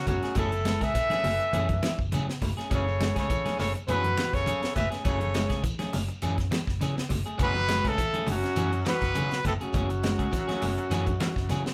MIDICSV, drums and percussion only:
0, 0, Header, 1, 3, 480
1, 0, Start_track
1, 0, Key_signature, 3, "minor"
1, 0, Tempo, 585938
1, 297, Time_signature, 4, 2, 24, 8
1, 9617, End_track
2, 0, Start_track
2, 0, Title_t, "Shekere"
2, 62, Note_on_c, 9, 82, 73
2, 144, Note_off_c, 9, 82, 0
2, 188, Note_on_c, 9, 82, 29
2, 270, Note_off_c, 9, 82, 0
2, 302, Note_on_c, 9, 82, 102
2, 384, Note_off_c, 9, 82, 0
2, 434, Note_on_c, 9, 82, 31
2, 516, Note_off_c, 9, 82, 0
2, 544, Note_on_c, 9, 82, 80
2, 626, Note_off_c, 9, 82, 0
2, 677, Note_on_c, 9, 82, 31
2, 759, Note_off_c, 9, 82, 0
2, 785, Note_on_c, 9, 82, 96
2, 866, Note_off_c, 9, 82, 0
2, 914, Note_on_c, 9, 82, 29
2, 996, Note_off_c, 9, 82, 0
2, 1027, Note_on_c, 9, 82, 72
2, 1109, Note_off_c, 9, 82, 0
2, 1159, Note_on_c, 9, 82, 30
2, 1241, Note_off_c, 9, 82, 0
2, 1265, Note_on_c, 9, 82, 93
2, 1347, Note_off_c, 9, 82, 0
2, 1396, Note_on_c, 9, 82, 28
2, 1478, Note_off_c, 9, 82, 0
2, 1506, Note_on_c, 9, 82, 69
2, 1588, Note_off_c, 9, 82, 0
2, 1646, Note_on_c, 9, 82, 30
2, 1728, Note_off_c, 9, 82, 0
2, 1754, Note_on_c, 9, 82, 90
2, 1836, Note_off_c, 9, 82, 0
2, 1888, Note_on_c, 9, 82, 34
2, 1969, Note_off_c, 9, 82, 0
2, 1991, Note_on_c, 9, 82, 69
2, 2073, Note_off_c, 9, 82, 0
2, 2122, Note_on_c, 9, 82, 29
2, 2204, Note_off_c, 9, 82, 0
2, 2234, Note_on_c, 9, 82, 94
2, 2316, Note_off_c, 9, 82, 0
2, 2360, Note_on_c, 9, 82, 32
2, 2441, Note_off_c, 9, 82, 0
2, 2465, Note_on_c, 9, 82, 74
2, 2547, Note_off_c, 9, 82, 0
2, 2598, Note_on_c, 9, 82, 32
2, 2680, Note_off_c, 9, 82, 0
2, 2707, Note_on_c, 9, 82, 96
2, 2789, Note_off_c, 9, 82, 0
2, 2834, Note_on_c, 9, 82, 31
2, 2916, Note_off_c, 9, 82, 0
2, 2942, Note_on_c, 9, 82, 76
2, 3024, Note_off_c, 9, 82, 0
2, 3075, Note_on_c, 9, 82, 29
2, 3157, Note_off_c, 9, 82, 0
2, 3179, Note_on_c, 9, 82, 102
2, 3261, Note_off_c, 9, 82, 0
2, 3314, Note_on_c, 9, 82, 29
2, 3396, Note_off_c, 9, 82, 0
2, 3428, Note_on_c, 9, 82, 66
2, 3510, Note_off_c, 9, 82, 0
2, 3553, Note_on_c, 9, 82, 29
2, 3635, Note_off_c, 9, 82, 0
2, 3663, Note_on_c, 9, 82, 89
2, 3745, Note_off_c, 9, 82, 0
2, 3792, Note_on_c, 9, 82, 31
2, 3874, Note_off_c, 9, 82, 0
2, 3910, Note_on_c, 9, 82, 74
2, 3992, Note_off_c, 9, 82, 0
2, 4044, Note_on_c, 9, 82, 33
2, 4126, Note_off_c, 9, 82, 0
2, 4144, Note_on_c, 9, 82, 98
2, 4226, Note_off_c, 9, 82, 0
2, 4276, Note_on_c, 9, 82, 30
2, 4358, Note_off_c, 9, 82, 0
2, 4382, Note_on_c, 9, 82, 84
2, 4464, Note_off_c, 9, 82, 0
2, 4518, Note_on_c, 9, 82, 31
2, 4600, Note_off_c, 9, 82, 0
2, 4630, Note_on_c, 9, 82, 97
2, 4712, Note_off_c, 9, 82, 0
2, 4760, Note_on_c, 9, 82, 30
2, 4842, Note_off_c, 9, 82, 0
2, 4864, Note_on_c, 9, 82, 79
2, 4946, Note_off_c, 9, 82, 0
2, 4999, Note_on_c, 9, 82, 30
2, 5081, Note_off_c, 9, 82, 0
2, 5102, Note_on_c, 9, 82, 90
2, 5184, Note_off_c, 9, 82, 0
2, 5241, Note_on_c, 9, 82, 27
2, 5323, Note_off_c, 9, 82, 0
2, 5344, Note_on_c, 9, 82, 68
2, 5426, Note_off_c, 9, 82, 0
2, 5471, Note_on_c, 9, 82, 31
2, 5553, Note_off_c, 9, 82, 0
2, 5581, Note_on_c, 9, 82, 88
2, 5663, Note_off_c, 9, 82, 0
2, 5712, Note_on_c, 9, 82, 31
2, 5794, Note_off_c, 9, 82, 0
2, 5821, Note_on_c, 9, 82, 68
2, 5903, Note_off_c, 9, 82, 0
2, 5952, Note_on_c, 9, 82, 32
2, 6034, Note_off_c, 9, 82, 0
2, 6059, Note_on_c, 9, 82, 96
2, 6141, Note_off_c, 9, 82, 0
2, 6190, Note_on_c, 9, 82, 33
2, 6272, Note_off_c, 9, 82, 0
2, 6299, Note_on_c, 9, 82, 77
2, 6381, Note_off_c, 9, 82, 0
2, 6434, Note_on_c, 9, 82, 31
2, 6516, Note_off_c, 9, 82, 0
2, 6543, Note_on_c, 9, 82, 96
2, 6625, Note_off_c, 9, 82, 0
2, 6667, Note_on_c, 9, 82, 31
2, 6749, Note_off_c, 9, 82, 0
2, 6771, Note_on_c, 9, 82, 80
2, 6853, Note_off_c, 9, 82, 0
2, 6908, Note_on_c, 9, 82, 31
2, 6990, Note_off_c, 9, 82, 0
2, 7011, Note_on_c, 9, 82, 96
2, 7093, Note_off_c, 9, 82, 0
2, 7144, Note_on_c, 9, 82, 28
2, 7226, Note_off_c, 9, 82, 0
2, 7249, Note_on_c, 9, 82, 75
2, 7331, Note_off_c, 9, 82, 0
2, 7376, Note_on_c, 9, 82, 31
2, 7458, Note_off_c, 9, 82, 0
2, 7488, Note_on_c, 9, 82, 94
2, 7570, Note_off_c, 9, 82, 0
2, 7614, Note_on_c, 9, 82, 30
2, 7696, Note_off_c, 9, 82, 0
2, 7736, Note_on_c, 9, 82, 72
2, 7818, Note_off_c, 9, 82, 0
2, 7861, Note_on_c, 9, 82, 31
2, 7943, Note_off_c, 9, 82, 0
2, 7971, Note_on_c, 9, 82, 99
2, 8052, Note_off_c, 9, 82, 0
2, 8109, Note_on_c, 9, 82, 30
2, 8191, Note_off_c, 9, 82, 0
2, 8219, Note_on_c, 9, 82, 77
2, 8301, Note_off_c, 9, 82, 0
2, 8356, Note_on_c, 9, 82, 30
2, 8438, Note_off_c, 9, 82, 0
2, 8457, Note_on_c, 9, 82, 101
2, 8539, Note_off_c, 9, 82, 0
2, 8593, Note_on_c, 9, 82, 31
2, 8675, Note_off_c, 9, 82, 0
2, 8701, Note_on_c, 9, 82, 73
2, 8783, Note_off_c, 9, 82, 0
2, 8827, Note_on_c, 9, 82, 29
2, 8909, Note_off_c, 9, 82, 0
2, 8937, Note_on_c, 9, 82, 93
2, 9019, Note_off_c, 9, 82, 0
2, 9069, Note_on_c, 9, 82, 29
2, 9151, Note_off_c, 9, 82, 0
2, 9179, Note_on_c, 9, 82, 66
2, 9261, Note_off_c, 9, 82, 0
2, 9312, Note_on_c, 9, 82, 28
2, 9394, Note_off_c, 9, 82, 0
2, 9425, Note_on_c, 9, 82, 95
2, 9507, Note_off_c, 9, 82, 0
2, 9557, Note_on_c, 9, 82, 31
2, 9617, Note_off_c, 9, 82, 0
2, 9617, End_track
3, 0, Start_track
3, 0, Title_t, "Drums"
3, 56, Note_on_c, 9, 36, 74
3, 58, Note_on_c, 9, 42, 48
3, 59, Note_on_c, 9, 64, 89
3, 138, Note_off_c, 9, 36, 0
3, 140, Note_off_c, 9, 42, 0
3, 141, Note_off_c, 9, 64, 0
3, 185, Note_on_c, 9, 42, 33
3, 194, Note_on_c, 9, 38, 32
3, 267, Note_off_c, 9, 42, 0
3, 276, Note_off_c, 9, 38, 0
3, 288, Note_on_c, 9, 42, 74
3, 294, Note_on_c, 9, 36, 89
3, 299, Note_on_c, 9, 64, 73
3, 370, Note_off_c, 9, 42, 0
3, 376, Note_off_c, 9, 36, 0
3, 381, Note_off_c, 9, 64, 0
3, 428, Note_on_c, 9, 42, 35
3, 510, Note_off_c, 9, 42, 0
3, 535, Note_on_c, 9, 42, 52
3, 535, Note_on_c, 9, 63, 91
3, 544, Note_on_c, 9, 38, 71
3, 617, Note_off_c, 9, 42, 0
3, 617, Note_off_c, 9, 63, 0
3, 626, Note_off_c, 9, 38, 0
3, 665, Note_on_c, 9, 36, 79
3, 666, Note_on_c, 9, 42, 34
3, 675, Note_on_c, 9, 38, 31
3, 747, Note_off_c, 9, 36, 0
3, 748, Note_off_c, 9, 42, 0
3, 757, Note_off_c, 9, 38, 0
3, 778, Note_on_c, 9, 36, 77
3, 779, Note_on_c, 9, 42, 76
3, 788, Note_on_c, 9, 38, 32
3, 859, Note_off_c, 9, 36, 0
3, 861, Note_off_c, 9, 42, 0
3, 870, Note_off_c, 9, 38, 0
3, 901, Note_on_c, 9, 63, 91
3, 909, Note_on_c, 9, 42, 36
3, 918, Note_on_c, 9, 38, 29
3, 982, Note_off_c, 9, 63, 0
3, 991, Note_off_c, 9, 42, 0
3, 1000, Note_off_c, 9, 38, 0
3, 1017, Note_on_c, 9, 46, 68
3, 1017, Note_on_c, 9, 64, 87
3, 1099, Note_off_c, 9, 46, 0
3, 1099, Note_off_c, 9, 64, 0
3, 1149, Note_on_c, 9, 42, 31
3, 1230, Note_off_c, 9, 42, 0
3, 1253, Note_on_c, 9, 63, 74
3, 1253, Note_on_c, 9, 64, 77
3, 1258, Note_on_c, 9, 42, 79
3, 1335, Note_off_c, 9, 63, 0
3, 1335, Note_off_c, 9, 64, 0
3, 1340, Note_off_c, 9, 42, 0
3, 1383, Note_on_c, 9, 63, 81
3, 1384, Note_on_c, 9, 42, 35
3, 1385, Note_on_c, 9, 36, 74
3, 1465, Note_off_c, 9, 63, 0
3, 1466, Note_off_c, 9, 42, 0
3, 1467, Note_off_c, 9, 36, 0
3, 1497, Note_on_c, 9, 63, 108
3, 1498, Note_on_c, 9, 42, 60
3, 1507, Note_on_c, 9, 38, 78
3, 1579, Note_off_c, 9, 63, 0
3, 1580, Note_off_c, 9, 42, 0
3, 1589, Note_off_c, 9, 38, 0
3, 1627, Note_on_c, 9, 36, 75
3, 1709, Note_off_c, 9, 36, 0
3, 1736, Note_on_c, 9, 63, 81
3, 1738, Note_on_c, 9, 42, 81
3, 1818, Note_off_c, 9, 63, 0
3, 1820, Note_off_c, 9, 42, 0
3, 1880, Note_on_c, 9, 38, 63
3, 1962, Note_off_c, 9, 38, 0
3, 1979, Note_on_c, 9, 36, 66
3, 1980, Note_on_c, 9, 46, 65
3, 1983, Note_on_c, 9, 64, 87
3, 2061, Note_off_c, 9, 36, 0
3, 2062, Note_off_c, 9, 46, 0
3, 2065, Note_off_c, 9, 64, 0
3, 2115, Note_on_c, 9, 42, 35
3, 2124, Note_on_c, 9, 38, 29
3, 2197, Note_off_c, 9, 42, 0
3, 2206, Note_off_c, 9, 38, 0
3, 2221, Note_on_c, 9, 36, 94
3, 2221, Note_on_c, 9, 42, 76
3, 2226, Note_on_c, 9, 64, 69
3, 2303, Note_off_c, 9, 36, 0
3, 2303, Note_off_c, 9, 42, 0
3, 2308, Note_off_c, 9, 64, 0
3, 2462, Note_on_c, 9, 63, 91
3, 2464, Note_on_c, 9, 42, 52
3, 2473, Note_on_c, 9, 38, 78
3, 2544, Note_off_c, 9, 63, 0
3, 2546, Note_off_c, 9, 42, 0
3, 2555, Note_off_c, 9, 38, 0
3, 2590, Note_on_c, 9, 36, 71
3, 2590, Note_on_c, 9, 42, 39
3, 2599, Note_on_c, 9, 38, 32
3, 2672, Note_off_c, 9, 36, 0
3, 2672, Note_off_c, 9, 42, 0
3, 2681, Note_off_c, 9, 38, 0
3, 2702, Note_on_c, 9, 36, 79
3, 2705, Note_on_c, 9, 42, 73
3, 2784, Note_off_c, 9, 36, 0
3, 2787, Note_off_c, 9, 42, 0
3, 2832, Note_on_c, 9, 63, 92
3, 2834, Note_on_c, 9, 42, 35
3, 2843, Note_on_c, 9, 38, 31
3, 2914, Note_off_c, 9, 63, 0
3, 2916, Note_off_c, 9, 42, 0
3, 2925, Note_off_c, 9, 38, 0
3, 2945, Note_on_c, 9, 64, 90
3, 2948, Note_on_c, 9, 46, 74
3, 2957, Note_on_c, 9, 38, 31
3, 3027, Note_off_c, 9, 64, 0
3, 3029, Note_off_c, 9, 46, 0
3, 3038, Note_off_c, 9, 38, 0
3, 3075, Note_on_c, 9, 42, 33
3, 3157, Note_off_c, 9, 42, 0
3, 3182, Note_on_c, 9, 42, 72
3, 3188, Note_on_c, 9, 63, 70
3, 3188, Note_on_c, 9, 64, 72
3, 3264, Note_off_c, 9, 42, 0
3, 3270, Note_off_c, 9, 63, 0
3, 3270, Note_off_c, 9, 64, 0
3, 3312, Note_on_c, 9, 42, 38
3, 3313, Note_on_c, 9, 63, 77
3, 3394, Note_off_c, 9, 42, 0
3, 3395, Note_off_c, 9, 63, 0
3, 3420, Note_on_c, 9, 63, 99
3, 3421, Note_on_c, 9, 42, 56
3, 3430, Note_on_c, 9, 38, 79
3, 3502, Note_off_c, 9, 63, 0
3, 3503, Note_off_c, 9, 42, 0
3, 3512, Note_off_c, 9, 38, 0
3, 3550, Note_on_c, 9, 36, 79
3, 3556, Note_on_c, 9, 42, 34
3, 3565, Note_on_c, 9, 38, 29
3, 3632, Note_off_c, 9, 36, 0
3, 3638, Note_off_c, 9, 42, 0
3, 3647, Note_off_c, 9, 38, 0
3, 3655, Note_on_c, 9, 63, 86
3, 3665, Note_on_c, 9, 42, 71
3, 3737, Note_off_c, 9, 63, 0
3, 3747, Note_off_c, 9, 42, 0
3, 3791, Note_on_c, 9, 42, 33
3, 3800, Note_on_c, 9, 38, 68
3, 3872, Note_off_c, 9, 42, 0
3, 3881, Note_off_c, 9, 38, 0
3, 3899, Note_on_c, 9, 36, 72
3, 3900, Note_on_c, 9, 42, 54
3, 3904, Note_on_c, 9, 64, 92
3, 3981, Note_off_c, 9, 36, 0
3, 3981, Note_off_c, 9, 42, 0
3, 3986, Note_off_c, 9, 64, 0
3, 4028, Note_on_c, 9, 42, 31
3, 4037, Note_on_c, 9, 38, 28
3, 4110, Note_off_c, 9, 42, 0
3, 4119, Note_off_c, 9, 38, 0
3, 4137, Note_on_c, 9, 42, 65
3, 4138, Note_on_c, 9, 36, 101
3, 4218, Note_off_c, 9, 42, 0
3, 4220, Note_off_c, 9, 36, 0
3, 4267, Note_on_c, 9, 42, 35
3, 4271, Note_on_c, 9, 63, 68
3, 4348, Note_off_c, 9, 42, 0
3, 4353, Note_off_c, 9, 63, 0
3, 4376, Note_on_c, 9, 42, 51
3, 4381, Note_on_c, 9, 63, 93
3, 4385, Note_on_c, 9, 38, 72
3, 4458, Note_off_c, 9, 42, 0
3, 4463, Note_off_c, 9, 63, 0
3, 4467, Note_off_c, 9, 38, 0
3, 4503, Note_on_c, 9, 42, 37
3, 4506, Note_on_c, 9, 36, 74
3, 4512, Note_on_c, 9, 38, 31
3, 4585, Note_off_c, 9, 42, 0
3, 4588, Note_off_c, 9, 36, 0
3, 4594, Note_off_c, 9, 38, 0
3, 4618, Note_on_c, 9, 36, 80
3, 4619, Note_on_c, 9, 42, 73
3, 4700, Note_off_c, 9, 36, 0
3, 4701, Note_off_c, 9, 42, 0
3, 4743, Note_on_c, 9, 63, 82
3, 4748, Note_on_c, 9, 42, 36
3, 4757, Note_on_c, 9, 38, 30
3, 4825, Note_off_c, 9, 63, 0
3, 4830, Note_off_c, 9, 42, 0
3, 4839, Note_off_c, 9, 38, 0
3, 4859, Note_on_c, 9, 46, 69
3, 4861, Note_on_c, 9, 64, 86
3, 4941, Note_off_c, 9, 46, 0
3, 4943, Note_off_c, 9, 64, 0
3, 4985, Note_on_c, 9, 42, 35
3, 5067, Note_off_c, 9, 42, 0
3, 5095, Note_on_c, 9, 42, 71
3, 5177, Note_off_c, 9, 42, 0
3, 5226, Note_on_c, 9, 36, 68
3, 5226, Note_on_c, 9, 42, 37
3, 5235, Note_on_c, 9, 38, 34
3, 5308, Note_off_c, 9, 36, 0
3, 5308, Note_off_c, 9, 42, 0
3, 5317, Note_off_c, 9, 38, 0
3, 5339, Note_on_c, 9, 42, 55
3, 5340, Note_on_c, 9, 63, 95
3, 5348, Note_on_c, 9, 38, 75
3, 5421, Note_off_c, 9, 42, 0
3, 5422, Note_off_c, 9, 63, 0
3, 5430, Note_off_c, 9, 38, 0
3, 5467, Note_on_c, 9, 36, 74
3, 5479, Note_on_c, 9, 38, 30
3, 5549, Note_off_c, 9, 36, 0
3, 5561, Note_off_c, 9, 38, 0
3, 5582, Note_on_c, 9, 42, 73
3, 5582, Note_on_c, 9, 63, 79
3, 5591, Note_on_c, 9, 38, 32
3, 5664, Note_off_c, 9, 42, 0
3, 5664, Note_off_c, 9, 63, 0
3, 5673, Note_off_c, 9, 38, 0
3, 5718, Note_on_c, 9, 38, 72
3, 5800, Note_off_c, 9, 38, 0
3, 5816, Note_on_c, 9, 46, 67
3, 5817, Note_on_c, 9, 36, 65
3, 5821, Note_on_c, 9, 64, 83
3, 5898, Note_off_c, 9, 46, 0
3, 5899, Note_off_c, 9, 36, 0
3, 5903, Note_off_c, 9, 64, 0
3, 5948, Note_on_c, 9, 42, 34
3, 6030, Note_off_c, 9, 42, 0
3, 6055, Note_on_c, 9, 64, 68
3, 6056, Note_on_c, 9, 42, 74
3, 6058, Note_on_c, 9, 36, 103
3, 6137, Note_off_c, 9, 42, 0
3, 6137, Note_off_c, 9, 64, 0
3, 6140, Note_off_c, 9, 36, 0
3, 6189, Note_on_c, 9, 63, 77
3, 6271, Note_off_c, 9, 63, 0
3, 6297, Note_on_c, 9, 42, 59
3, 6297, Note_on_c, 9, 63, 101
3, 6306, Note_on_c, 9, 38, 71
3, 6379, Note_off_c, 9, 42, 0
3, 6379, Note_off_c, 9, 63, 0
3, 6388, Note_off_c, 9, 38, 0
3, 6427, Note_on_c, 9, 36, 76
3, 6429, Note_on_c, 9, 42, 38
3, 6438, Note_on_c, 9, 38, 31
3, 6509, Note_off_c, 9, 36, 0
3, 6511, Note_off_c, 9, 42, 0
3, 6520, Note_off_c, 9, 38, 0
3, 6538, Note_on_c, 9, 36, 76
3, 6541, Note_on_c, 9, 42, 78
3, 6620, Note_off_c, 9, 36, 0
3, 6623, Note_off_c, 9, 42, 0
3, 6667, Note_on_c, 9, 63, 83
3, 6670, Note_on_c, 9, 42, 37
3, 6749, Note_off_c, 9, 63, 0
3, 6752, Note_off_c, 9, 42, 0
3, 6771, Note_on_c, 9, 64, 88
3, 6779, Note_on_c, 9, 46, 68
3, 6853, Note_off_c, 9, 64, 0
3, 6861, Note_off_c, 9, 46, 0
3, 6910, Note_on_c, 9, 42, 33
3, 6919, Note_on_c, 9, 38, 30
3, 6992, Note_off_c, 9, 42, 0
3, 7001, Note_off_c, 9, 38, 0
3, 7014, Note_on_c, 9, 42, 80
3, 7017, Note_on_c, 9, 63, 73
3, 7096, Note_off_c, 9, 42, 0
3, 7099, Note_off_c, 9, 63, 0
3, 7149, Note_on_c, 9, 42, 38
3, 7231, Note_off_c, 9, 42, 0
3, 7258, Note_on_c, 9, 42, 57
3, 7263, Note_on_c, 9, 63, 101
3, 7267, Note_on_c, 9, 38, 77
3, 7340, Note_off_c, 9, 42, 0
3, 7344, Note_off_c, 9, 63, 0
3, 7349, Note_off_c, 9, 38, 0
3, 7386, Note_on_c, 9, 42, 36
3, 7388, Note_on_c, 9, 36, 76
3, 7395, Note_on_c, 9, 38, 30
3, 7468, Note_off_c, 9, 42, 0
3, 7470, Note_off_c, 9, 36, 0
3, 7477, Note_off_c, 9, 38, 0
3, 7499, Note_on_c, 9, 42, 77
3, 7508, Note_on_c, 9, 63, 80
3, 7581, Note_off_c, 9, 42, 0
3, 7590, Note_off_c, 9, 63, 0
3, 7629, Note_on_c, 9, 42, 33
3, 7638, Note_on_c, 9, 38, 64
3, 7711, Note_off_c, 9, 42, 0
3, 7720, Note_off_c, 9, 38, 0
3, 7740, Note_on_c, 9, 36, 66
3, 7740, Note_on_c, 9, 64, 88
3, 7742, Note_on_c, 9, 42, 54
3, 7821, Note_off_c, 9, 36, 0
3, 7822, Note_off_c, 9, 64, 0
3, 7824, Note_off_c, 9, 42, 0
3, 7873, Note_on_c, 9, 42, 33
3, 7955, Note_off_c, 9, 42, 0
3, 7979, Note_on_c, 9, 42, 66
3, 7980, Note_on_c, 9, 36, 93
3, 7982, Note_on_c, 9, 64, 70
3, 8061, Note_off_c, 9, 42, 0
3, 8062, Note_off_c, 9, 36, 0
3, 8064, Note_off_c, 9, 64, 0
3, 8111, Note_on_c, 9, 42, 39
3, 8193, Note_off_c, 9, 42, 0
3, 8221, Note_on_c, 9, 42, 49
3, 8224, Note_on_c, 9, 63, 89
3, 8230, Note_on_c, 9, 38, 74
3, 8303, Note_off_c, 9, 42, 0
3, 8306, Note_off_c, 9, 63, 0
3, 8312, Note_off_c, 9, 38, 0
3, 8349, Note_on_c, 9, 36, 72
3, 8351, Note_on_c, 9, 42, 34
3, 8431, Note_off_c, 9, 36, 0
3, 8433, Note_off_c, 9, 42, 0
3, 8461, Note_on_c, 9, 36, 72
3, 8465, Note_on_c, 9, 42, 73
3, 8474, Note_on_c, 9, 38, 30
3, 8543, Note_off_c, 9, 36, 0
3, 8547, Note_off_c, 9, 42, 0
3, 8556, Note_off_c, 9, 38, 0
3, 8592, Note_on_c, 9, 42, 35
3, 8596, Note_on_c, 9, 63, 80
3, 8601, Note_on_c, 9, 38, 30
3, 8674, Note_off_c, 9, 42, 0
3, 8678, Note_off_c, 9, 63, 0
3, 8683, Note_off_c, 9, 38, 0
3, 8699, Note_on_c, 9, 46, 69
3, 8705, Note_on_c, 9, 64, 93
3, 8781, Note_off_c, 9, 46, 0
3, 8787, Note_off_c, 9, 64, 0
3, 8829, Note_on_c, 9, 42, 34
3, 8911, Note_off_c, 9, 42, 0
3, 8939, Note_on_c, 9, 42, 70
3, 8941, Note_on_c, 9, 63, 74
3, 8948, Note_on_c, 9, 38, 33
3, 9021, Note_off_c, 9, 42, 0
3, 9023, Note_off_c, 9, 63, 0
3, 9030, Note_off_c, 9, 38, 0
3, 9064, Note_on_c, 9, 63, 77
3, 9068, Note_on_c, 9, 42, 35
3, 9069, Note_on_c, 9, 36, 71
3, 9146, Note_off_c, 9, 63, 0
3, 9150, Note_off_c, 9, 36, 0
3, 9150, Note_off_c, 9, 42, 0
3, 9177, Note_on_c, 9, 42, 50
3, 9179, Note_on_c, 9, 63, 108
3, 9186, Note_on_c, 9, 38, 73
3, 9259, Note_off_c, 9, 42, 0
3, 9261, Note_off_c, 9, 63, 0
3, 9268, Note_off_c, 9, 38, 0
3, 9307, Note_on_c, 9, 36, 70
3, 9314, Note_on_c, 9, 38, 29
3, 9389, Note_off_c, 9, 36, 0
3, 9396, Note_off_c, 9, 38, 0
3, 9415, Note_on_c, 9, 63, 84
3, 9417, Note_on_c, 9, 42, 72
3, 9426, Note_on_c, 9, 38, 32
3, 9497, Note_off_c, 9, 63, 0
3, 9499, Note_off_c, 9, 42, 0
3, 9508, Note_off_c, 9, 38, 0
3, 9554, Note_on_c, 9, 38, 72
3, 9617, Note_off_c, 9, 38, 0
3, 9617, End_track
0, 0, End_of_file